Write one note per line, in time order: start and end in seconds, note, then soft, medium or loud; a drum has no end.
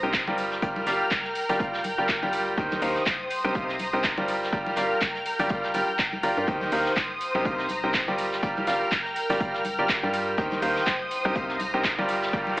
0.00 0.25 C2 medium
0.00 0.20 C3 medium
0.00 0.20 D#4 medium
0.00 0.20 G4 medium
0.00 0.20 A#4 medium
0.00 0.36 C5 medium
0.00 0.20 C5 medium
0.00 0.20 G5 medium
0.00 0.37 A#5 medium
0.00 0.36 D#6 medium
0.00 tambourine soft
0.13 kick loud
0.13 snare loud
0.13 clap loud
0.13 closed hi-hat medium
0.13 tambourine medium
0.27 0.60 G1 medium
0.27 0.60 G3 medium
0.27 0.60 F4 medium
0.27 0.60 G4 medium
0.27 0.60 A#4 medium
0.27 0.60 D5 medium
0.27 0.60 G5 medium
0.27 tambourine soft
0.27 high conga loud
0.38 2.55 A#4 medium
0.38 3.28 G5 medium
0.38 2.55 F6 medium
0.38 closed hi-hat medium
0.38 open hi-hat loud
0.38 tambourine medium
0.51 snare medium
0.51 tambourine soft
0.62 0.85 G1 loud
0.62 0.84 G3 loud
0.62 0.84 F4 medium
0.62 0.84 G4 medium
0.62 0.84 A#4 medium
0.62 0.84 D5 medium
0.62 0.84 G5 loud
0.62 kick loud
0.62 closed hi-hat medium
0.62 tambourine medium
0.76 tambourine soft
0.76 high conga loud
0.86 1.03 G1 medium
0.86 1.06 G3 medium
0.86 1.06 F4 medium
0.86 1.06 G4 medium
0.86 1.06 A#4 medium
0.86 1.06 D5 medium
0.86 1.06 F5 medium
0.86 snare medium
0.86 closed hi-hat medium
0.86 open hi-hat loud
0.86 tambourine loud
1.01 tambourine soft
1.11 kick loud
1.11 snare loud
1.11 clap loud
1.11 closed hi-hat medium
1.11 tambourine medium
1.11 high conga medium
1.24 snare soft
1.35 closed hi-hat medium
1.35 open hi-hat loud
1.35 tambourine loud
1.49 1.58 G1 loud
1.49 1.57 G3 medium
1.49 1.57 F4 medium
1.49 1.57 G4 medium
1.49 1.57 A#4 medium
1.49 1.57 D5 medium
1.49 1.57 G5 loud
1.49 snare soft
1.49 open hi-hat medium
1.49 tambourine soft
1.49 high conga medium
1.59 1.95 G1 loud
1.59 1.79 G3 medium
1.59 1.79 F4 medium
1.59 1.79 G4 medium
1.59 1.79 A#4 medium
1.59 1.79 D5 medium
1.59 1.79 F5 medium
1.59 kick loud
1.59 closed hi-hat medium
1.59 tambourine medium
1.73 snare soft
1.73 tambourine soft
1.84 closed hi-hat medium
1.84 open hi-hat loud
1.84 tambourine medium
1.84 high conga medium
1.98 2.20 G1 loud
1.98 2.15 G3 medium
1.98 2.15 F4 medium
1.98 2.15 G4 medium
1.98 2.15 A#4 medium
1.98 2.15 D5 medium
1.98 2.15 G5 medium
1.98 tambourine soft
2.09 kick loud
2.09 snare loud
2.09 clap loud
2.09 closed hi-hat medium
2.09 tambourine medium
2.22 2.55 G1 loud
2.22 2.55 G3 medium
2.22 2.55 F4 medium
2.22 2.55 G4 medium
2.22 2.55 A#4 medium
2.22 2.55 D5 medium
2.22 2.55 G5 medium
2.22 tambourine soft
2.22 high conga loud
2.33 closed hi-hat medium
2.33 open hi-hat loud
2.33 tambourine medium
2.47 tambourine soft
2.57 2.80 D#2 loud
2.57 2.79 D#3 loud
2.57 2.79 D#4 medium
2.57 2.79 G4 medium
2.57 2.79 A#4 medium
2.57 4.26 C5 medium
2.57 2.79 C5 medium
2.57 2.79 G5 loud
2.57 4.26 D#6 medium
2.57 kick loud
2.57 closed hi-hat medium
2.57 tambourine medium
2.71 snare soft
2.71 tambourine soft
2.71 high conga loud
2.82 2.99 D#2 medium
2.82 3.01 D#3 medium
2.82 3.01 D#4 medium
2.82 3.01 G4 medium
2.82 3.01 A#4 medium
2.82 3.01 C5 medium
2.82 3.01 F5 medium
2.82 open hi-hat loud
2.82 open hi-hat medium
2.82 tambourine loud
2.95 snare medium
2.95 tambourine soft
3.06 kick loud
3.06 snare loud
3.06 clap loud
3.06 closed hi-hat medium
3.06 tambourine medium
3.06 high conga medium
3.30 4.27 A#5 medium
3.30 closed hi-hat medium
3.30 open hi-hat loud
3.30 tambourine medium
3.44 3.53 C2 loud
3.44 3.52 C3 medium
3.44 3.52 D#4 medium
3.44 3.52 G4 medium
3.44 3.52 A#4 medium
3.44 3.52 C5 medium
3.44 3.52 G5 loud
3.44 tambourine soft
3.44 high conga loud
3.54 3.91 C2 loud
3.54 3.74 C3 medium
3.54 3.74 D#4 medium
3.54 3.74 G4 medium
3.54 3.74 A#4 medium
3.54 3.74 C5 medium
3.54 3.74 F5 loud
3.54 kick loud
3.54 closed hi-hat medium
3.54 tambourine medium
3.69 snare soft
3.69 tambourine soft
3.79 closed hi-hat medium
3.79 open hi-hat loud
3.79 tambourine medium
3.79 high conga medium
3.93 4.15 C2 medium
3.93 4.10 C3 medium
3.93 4.10 D#4 medium
3.93 4.10 G4 medium
3.93 4.10 A#4 medium
3.93 4.10 C5 medium
3.93 4.10 G5 medium
3.93 tambourine soft
4.03 kick loud
4.03 snare loud
4.03 clap loud
4.03 closed hi-hat medium
4.18 4.50 G1 medium
4.18 4.50 G3 medium
4.18 4.50 F4 medium
4.18 4.50 G4 medium
4.18 4.50 A#4 medium
4.18 4.50 D5 medium
4.18 4.50 G5 loud
4.18 tambourine soft
4.18 high conga medium
4.28 6.46 A#4 medium
4.28 7.18 G5 medium
4.28 6.46 F6 medium
4.28 closed hi-hat medium
4.28 open hi-hat loud
4.28 tambourine loud
4.43 snare medium
4.43 tambourine soft
4.52 4.75 G1 loud
4.52 4.74 G3 loud
4.52 4.74 F4 medium
4.52 4.74 G4 medium
4.52 4.74 A#4 medium
4.52 4.74 D5 medium
4.52 4.74 G5 loud
4.52 kick loud
4.52 closed hi-hat medium
4.52 tambourine medium
4.67 tambourine soft
4.67 high conga medium
4.76 4.94 G1 medium
4.76 4.96 G3 medium
4.76 4.96 F4 medium
4.76 4.96 G4 medium
4.76 4.96 A#4 medium
4.76 4.96 D5 medium
4.76 4.96 F5 medium
4.76 snare medium
4.76 closed hi-hat medium
4.76 open hi-hat loud
4.76 tambourine loud
4.91 tambourine soft
5.01 kick loud
5.01 snare loud
5.01 clap loud
5.01 closed hi-hat medium
5.01 tambourine medium
5.01 high conga medium
5.15 snare soft
5.26 closed hi-hat medium
5.26 open hi-hat loud
5.26 tambourine medium
5.39 5.48 G1 loud
5.39 5.48 G3 medium
5.39 5.48 F4 medium
5.39 5.48 G4 medium
5.39 5.48 A#4 medium
5.39 5.48 D5 medium
5.39 5.48 G5 loud
5.39 snare soft
5.39 open hi-hat medium
5.39 tambourine soft
5.39 high conga loud
5.49 5.72 G1 loud
5.49 5.69 G3 medium
5.49 5.69 F4 medium
5.49 5.69 G4 medium
5.49 5.69 A#4 medium
5.49 5.69 D5 medium
5.49 5.69 F5 loud
5.49 kick loud
5.49 closed hi-hat medium
5.49 tambourine soft
5.63 snare soft
5.63 tambourine soft
5.74 5.85 G1 medium
5.74 5.87 G3 medium
5.74 5.87 F4 medium
5.74 5.87 G4 medium
5.74 5.87 A#4 medium
5.74 5.87 D5 medium
5.74 5.87 G5 medium
5.74 closed hi-hat medium
5.74 open hi-hat loud
5.74 tambourine loud
5.74 high conga medium
5.88 tambourine soft
5.98 kick loud
5.98 snare loud
5.98 clap loud
5.98 closed hi-hat medium
5.98 tambourine medium
6.12 tambourine soft
6.12 high conga medium
6.23 6.34 G1 medium
6.23 6.35 F4 loud
6.23 6.35 G4 medium
6.23 6.35 A#4 medium
6.23 6.35 D5 medium
6.23 6.35 A#5 loud
6.23 closed hi-hat medium
6.23 open hi-hat loud
6.23 tambourine medium
6.37 6.46 G2 loud
6.37 6.46 F4 medium
6.37 6.46 G4 medium
6.37 6.46 A#4 medium
6.37 6.46 D5 medium
6.37 6.46 F5 medium
6.37 tambourine soft
6.48 6.70 D#2 medium
6.48 6.70 D#3 loud
6.48 6.70 D#4 medium
6.48 6.70 G4 medium
6.48 6.70 A#4 medium
6.48 8.17 C5 medium
6.48 6.70 C5 medium
6.48 6.70 G5 loud
6.48 8.17 D#6 medium
6.48 kick loud
6.48 closed hi-hat medium
6.48 tambourine soft
6.61 snare soft
6.61 tambourine soft
6.61 high conga medium
6.72 6.89 D#2 medium
6.72 6.91 D#3 medium
6.72 6.91 D#4 medium
6.72 6.91 G4 medium
6.72 6.91 A#4 medium
6.72 6.91 C5 medium
6.72 6.91 F5 medium
6.72 open hi-hat medium
6.72 open hi-hat loud
6.72 tambourine medium
6.85 snare soft
6.85 tambourine soft
6.96 kick loud
6.96 snare loud
6.96 clap loud
6.96 closed hi-hat medium
6.96 tambourine medium
6.96 high conga medium
7.20 8.17 A#5 medium
7.20 closed hi-hat medium
7.20 open hi-hat loud
7.20 tambourine loud
7.35 7.43 C2 loud
7.35 7.43 C3 medium
7.35 7.43 D#4 medium
7.35 7.43 G4 medium
7.35 7.43 A#4 medium
7.35 7.43 C5 medium
7.35 7.43 G5 loud
7.35 tambourine soft
7.35 high conga medium
7.45 7.81 C2 loud
7.45 7.64 C3 medium
7.45 7.64 D#4 medium
7.45 7.64 G4 medium
7.45 7.64 A#4 medium
7.45 7.64 C5 medium
7.45 7.64 F5 loud
7.45 kick loud
7.45 closed hi-hat medium
7.45 tambourine soft
7.58 snare soft
7.58 tambourine soft
7.69 closed hi-hat medium
7.69 open hi-hat loud
7.69 tambourine medium
7.69 high conga medium
7.83 8.05 C2 medium
7.83 8.01 C3 medium
7.83 8.01 D#4 medium
7.83 8.01 G4 medium
7.83 8.01 A#4 medium
7.83 8.01 C5 medium
7.83 8.01 G5 medium
7.83 tambourine soft
7.94 kick loud
7.94 snare loud
7.94 clap loud
7.94 closed hi-hat medium
7.94 tambourine medium
8.08 8.41 G1 medium
8.08 8.40 G3 medium
8.08 8.40 F4 medium
8.08 8.40 G4 medium
8.08 8.40 A#4 medium
8.08 8.40 D5 medium
8.08 8.40 G5 medium
8.08 tambourine soft
8.08 high conga medium
8.18 10.36 A#4 medium
8.18 10.36 G5 medium
8.18 10.36 F6 medium
8.18 closed hi-hat medium
8.18 open hi-hat loud
8.18 tambourine medium
8.32 snare medium
8.32 tambourine soft
8.43 8.65 G1 loud
8.43 8.65 G3 loud
8.43 8.65 F4 medium
8.43 8.65 G4 medium
8.43 8.65 A#4 medium
8.43 8.65 D5 medium
8.43 8.65 G5 loud
8.43 kick loud
8.43 closed hi-hat medium
8.43 tambourine soft
8.57 tambourine soft
8.57 high conga medium
8.67 8.84 G1 medium
8.67 8.86 G3 medium
8.67 8.86 F4 medium
8.67 8.86 G4 medium
8.67 8.86 A#4 medium
8.67 8.86 D5 medium
8.67 8.86 F5 medium
8.67 snare medium
8.67 closed hi-hat medium
8.67 open hi-hat loud
8.67 tambourine loud
8.80 tambourine soft
8.91 kick medium
8.91 snare loud
8.91 clap loud
8.91 closed hi-hat medium
8.91 tambourine soft
8.91 high conga medium
9.05 snare soft
9.16 closed hi-hat medium
9.16 open hi-hat loud
9.16 tambourine medium
9.29 9.38 G1 loud
9.29 9.38 G3 medium
9.29 9.38 F4 medium
9.29 9.38 G4 medium
9.29 9.38 A#4 medium
9.29 9.38 D5 medium
9.29 9.38 G5 loud
9.29 snare soft
9.29 open hi-hat medium
9.29 tambourine soft
9.29 high conga medium
9.40 9.76 G1 loud
9.40 9.59 G3 medium
9.40 9.59 F4 medium
9.40 9.59 G4 medium
9.40 9.59 A#4 medium
9.40 9.59 F5 medium
9.40 kick loud
9.40 closed hi-hat medium
9.40 tambourine soft
9.54 snare soft
9.54 tambourine soft
9.65 closed hi-hat medium
9.65 open hi-hat loud
9.65 tambourine medium
9.65 high conga medium
9.78 10.00 G1 medium
9.78 9.96 G3 medium
9.78 9.96 F4 medium
9.78 9.96 G4 medium
9.78 9.96 A#4 medium
9.78 9.96 D5 medium
9.78 9.96 G5 medium
9.78 tambourine soft
9.89 kick loud
9.89 snare loud
9.89 clap loud
9.89 closed hi-hat medium
9.89 tambourine medium
10.03 10.36 G2 loud
10.03 10.35 G3 medium
10.03 10.35 F4 medium
10.03 10.35 G4 medium
10.03 10.35 A#4 medium
10.03 10.35 D5 medium
10.03 10.35 G5 loud
10.03 tambourine soft
10.03 high conga medium
10.13 closed hi-hat medium
10.13 open hi-hat loud
10.13 tambourine medium
10.28 tambourine soft
10.38 10.60 D#2 loud
10.38 10.60 D#3 loud
10.38 10.60 D#4 medium
10.38 10.60 G4 medium
10.38 10.60 A#4 medium
10.38 10.60 C5 medium
10.38 12.07 C5 medium
10.38 10.60 G5 loud
10.38 11.10 G5 medium
10.38 12.07 D#6 medium
10.38 kick loud
10.38 closed hi-hat medium
10.38 tambourine soft
10.38 riser medium
10.51 snare soft
10.51 tambourine soft
10.51 high conga medium
10.62 10.79 D#2 medium
10.62 10.81 D#3 medium
10.62 10.81 D#4 medium
10.62 10.81 G4 medium
10.62 10.81 A#4 medium
10.62 10.81 C5 medium
10.62 10.81 F5 loud
10.62 open hi-hat medium
10.62 open hi-hat loud
10.62 tambourine medium
10.76 snare medium
10.76 tambourine soft
10.86 kick loud
10.86 snare loud
10.86 clap loud
10.86 closed hi-hat medium
10.86 tambourine medium
10.86 high conga medium
11.11 12.08 A#5 medium
11.11 closed hi-hat medium
11.11 open hi-hat loud
11.11 tambourine medium
11.24 11.33 C2 loud
11.24 11.33 C3 medium
11.24 11.33 D#4 medium
11.24 11.33 G4 medium
11.24 11.33 A#4 medium
11.24 11.33 C5 medium
11.24 11.33 G5 loud
11.24 tambourine soft
11.24 high conga medium
11.35 11.71 C2 loud
11.35 11.54 C3 medium
11.35 11.54 D#4 medium
11.35 11.54 G4 medium
11.35 11.54 A#4 medium
11.35 11.54 C5 medium
11.35 11.54 F5 medium
11.35 kick loud
11.35 closed hi-hat medium
11.35 tambourine medium
11.49 snare soft
11.49 tambourine soft
11.59 closed hi-hat medium
11.59 open hi-hat loud
11.59 tambourine medium
11.59 high conga medium
11.74 11.95 C2 medium
11.74 11.91 C3 medium
11.74 11.91 D#4 medium
11.74 11.91 G4 medium
11.74 11.91 A#4 medium
11.74 11.91 C5 medium
11.74 11.91 G5 medium
11.74 tambourine soft
11.84 kick loud
11.84 snare loud
11.84 clap loud
11.84 closed hi-hat medium
11.84 tambourine soft
11.98 12.31 G1 loud
11.98 12.31 G3 medium
11.98 12.31 F4 medium
11.98 12.31 G4 medium
11.98 12.31 A#4 medium
11.98 12.31 D5 medium
11.98 12.31 G5 loud
11.98 tambourine soft
11.98 high conga medium
12.08 12.60 A#4 medium
12.08 12.60 G5 medium
12.08 12.60 F6 loud
12.08 closed hi-hat medium
12.08 open hi-hat loud
12.08 tambourine medium
12.22 snare medium
12.22 tambourine soft
12.33 12.55 G1 loud
12.33 12.55 G3 loud
12.33 12.55 F4 medium
12.33 12.55 G4 medium
12.33 12.55 A#4 medium
12.33 12.55 D5 medium
12.33 12.55 G5 loud
12.33 kick loud
12.33 closed hi-hat medium
12.33 tambourine medium
12.47 tambourine soft
12.47 high conga loud
12.57 closed hi-hat medium